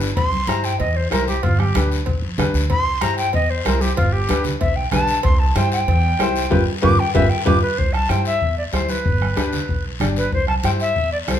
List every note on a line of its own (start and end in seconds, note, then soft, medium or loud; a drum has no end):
0.00 0.10 G1 medium
0.00 short guiro medium
0.16 0.42 C2 loud
0.16 0.50 C6 loud
0.16 bombo low medium
0.16 cowbell loud
0.16 long guiro medium
0.32 high conga medium
0.47 0.73 G2 medium
0.47 0.71 E4 medium
0.47 0.71 G4 medium
0.47 0.71 C5 medium
0.47 0.66 A#5 medium
0.47 bombo rim medium
0.47 high conga medium
0.47 short guiro medium
0.64 0.79 G5 medium
0.64 short guiro medium
0.80 1.05 E2 loud
0.80 0.98 D#5 medium
0.80 bombo low medium
0.80 cowbell medium
0.80 long guiro medium
0.96 1.11 C5 medium
0.96 high conga soft
1.10 1.37 C2 medium
1.10 1.33 E4 medium
1.10 1.34 G4 medium
1.10 1.27 A#4 medium
1.10 1.34 C5 medium
1.10 bombo rim medium
1.10 high conga medium
1.10 low timbale medium
1.10 short guiro medium
1.28 1.45 G4 medium
1.28 high conga medium
1.28 short guiro medium
1.43 1.69 G1 loud
1.43 1.61 F4 medium
1.43 bombo low medium
1.43 cowbell loud
1.43 high conga soft
1.43 long guiro medium
1.59 1.90 G4 medium
1.59 bombo rim medium
1.59 high conga medium
1.75 2.01 D2 medium
1.75 1.98 D4 medium
1.75 1.98 G4 medium
1.75 1.98 B4 medium
1.75 bombo rim medium
1.75 high conga medium
1.75 short guiro medium
1.92 short guiro medium
2.06 2.20 B1 loud
2.06 bombo low medium
2.06 cowbell medium
2.06 long guiro medium
2.22 2.37 F2 medium
2.22 high conga soft
2.38 2.53 E2 medium
2.38 2.61 D4 medium
2.38 2.61 G4 medium
2.38 2.61 B4 medium
2.38 bombo rim medium
2.38 high conga medium
2.38 low conga medium
2.38 short guiro medium
2.54 2.68 D2 medium
2.54 short guiro medium
2.70 2.96 C2 medium
2.70 3.03 C6 loud
2.70 bombo low medium
2.70 cowbell medium
2.70 long guiro medium
3.01 3.27 G2 medium
3.01 3.24 E4 medium
3.01 3.24 G4 medium
3.01 3.24 C5 medium
3.01 3.17 A#5 medium
3.01 bombo rim medium
3.01 high conga loud
3.01 short guiro medium
3.18 3.33 G5 loud
3.18 short guiro medium
3.33 3.59 E2 loud
3.33 3.52 D#5 medium
3.33 bombo low medium
3.33 cowbell medium
3.33 long guiro medium
3.49 3.68 C5 medium
3.49 high conga soft
3.65 3.91 C2 medium
3.65 3.88 E4 medium
3.65 3.88 G4 medium
3.65 3.82 A#4 medium
3.65 3.88 C5 medium
3.65 bombo rim medium
3.65 high conga medium
3.65 low timbale medium
3.65 short guiro medium
3.81 3.96 G4 medium
3.81 high conga medium
3.81 short guiro medium
3.96 4.23 G1 loud
3.96 4.14 F4 medium
3.96 bombo low medium
3.96 cowbell loud
3.96 high conga soft
3.96 long guiro medium
4.12 4.44 G4 medium
4.29 4.54 D2 medium
4.29 4.51 D4 medium
4.29 4.51 G4 medium
4.29 4.52 B4 medium
4.29 bombo rim medium
4.29 high conga loud
4.29 short guiro medium
4.44 low conga medium
4.44 short guiro medium
4.61 4.86 B1 loud
4.61 4.78 E5 medium
4.61 bombo low medium
4.61 cowbell medium
4.61 long guiro medium
4.76 4.91 G5 medium
4.76 high conga soft
4.92 5.18 B1 medium
4.92 5.15 D4 medium
4.92 5.15 G4 medium
4.92 5.15 B4 medium
4.92 5.23 A5 loud
4.92 bombo rim medium
4.92 high conga medium
4.92 low conga medium
4.92 short guiro medium
5.08 short guiro medium
5.23 5.50 C2 loud
5.23 5.41 C6 medium
5.23 bombo low medium
5.23 cowbell loud
5.23 long guiro medium
5.39 5.58 A5 medium
5.56 5.81 G2 medium
5.56 5.78 E4 medium
5.56 5.78 G4 medium
5.56 5.78 C5 medium
5.56 5.71 G5 loud
5.56 bombo rim medium
5.56 high conga medium
5.56 short guiro medium
5.72 6.64 G5 loud
5.72 short guiro medium
5.88 6.13 E2 loud
5.88 bombo low medium
5.88 cowbell medium
5.88 long guiro medium
6.04 high conga soft
6.19 6.45 C2 medium
6.19 6.42 E4 medium
6.19 6.42 G4 medium
6.19 6.42 C5 medium
6.19 bombo rim medium
6.19 high conga medium
6.19 low timbale medium
6.19 short guiro medium
6.36 short guiro medium
6.50 6.63 G1 medium
6.50 6.61 F4 medium
6.50 6.61 G4 loud
6.50 6.61 B4 medium
6.50 bombo low loud
6.50 high conga loud
6.50 high timbale medium
6.50 long guiro loud
6.82 6.95 G1 loud
6.82 6.93 F4 loud
6.82 6.93 G4 medium
6.82 6.93 B4 loud
6.82 7.01 D6 loud
6.82 bombo low loud
6.82 high conga loud
6.82 high timbale loud
6.82 long guiro loud
7.00 7.14 G5 loud
7.14 7.27 G1 loud
7.14 7.24 F4 medium
7.14 7.25 G4 loud
7.14 7.25 B4 medium
7.14 7.31 E5 medium
7.14 bombo low medium
7.14 high conga loud
7.14 high timbale loud
7.14 long guiro loud
7.30 7.45 G5 medium
7.46 7.58 G1 loud
7.46 7.56 F4 medium
7.46 7.56 G4 loud
7.46 7.56 B4 loud
7.46 7.61 D6 medium
7.46 bombo low loud
7.46 high conga loud
7.46 high timbale loud
7.46 long guiro loud
7.62 7.80 B4 medium
7.78 8.04 C2 medium
7.78 7.95 C5 medium
7.78 bombo low medium
7.78 long guiro medium
7.93 8.11 A5 medium
7.93 bombo rim medium
7.93 high conga medium
8.09 8.35 G2 medium
8.09 8.32 E4 medium
8.09 8.32 G4 medium
8.09 8.32 C5 medium
8.09 8.26 G5 medium
8.09 bombo rim medium
8.09 high conga medium
8.09 short guiro medium
8.25 8.55 E5 loud
8.25 short guiro medium
8.41 8.67 E2 medium
8.41 bombo low medium
8.41 long guiro medium
8.57 8.64 D5 medium
8.57 high conga soft
8.73 8.98 D2 medium
8.73 8.95 E4 medium
8.73 8.95 G4 medium
8.73 8.91 C5 medium
8.73 8.96 C5 medium
8.73 bombo rim medium
8.73 high conga medium
8.73 short guiro medium
8.89 9.85 B4 medium
8.89 high conga medium
8.89 short guiro medium
9.05 9.31 G1 loud
9.05 bombo low medium
9.05 high conga soft
9.05 long guiro medium
9.21 bombo rim medium
9.21 high conga medium
9.36 9.62 D2 medium
9.36 9.59 D4 medium
9.36 9.59 G4 medium
9.36 9.59 B4 medium
9.36 bombo rim medium
9.36 high conga medium
9.36 short guiro medium
9.53 low conga medium
9.53 short guiro medium
9.68 9.94 B1 medium
9.68 bombo low medium
9.68 long guiro medium
9.85 high conga soft
10.00 10.26 G1 medium
10.00 10.23 D4 medium
10.00 10.23 G4 medium
10.00 10.23 D5 medium
10.00 bombo rim medium
10.00 high conga medium
10.00 low conga medium
10.00 short guiro medium
10.16 10.32 B4 medium
10.16 short guiro medium
10.32 10.58 C2 medium
10.32 10.48 C5 loud
10.32 bombo low medium
10.32 high conga soft
10.32 long guiro medium
10.48 10.54 A5 medium
10.48 bombo rim medium
10.48 high conga medium
10.64 10.89 G2 medium
10.64 10.86 E4 medium
10.64 10.86 G4 medium
10.64 10.86 C5 medium
10.64 10.70 G5 loud
10.64 bombo rim medium
10.64 high conga medium
10.64 short guiro medium
10.80 11.10 E5 loud
10.80 short guiro medium
10.96 11.21 E2 medium
10.96 bombo low medium
10.96 long guiro medium
11.12 11.18 D5 medium
11.12 high conga soft
11.27 11.40 C2 medium
11.27 11.40 E4 medium
11.27 11.40 G4 medium
11.27 11.40 A4 medium
11.27 11.40 C5 medium
11.27 bombo rim medium
11.27 high conga medium
11.27 short guiro medium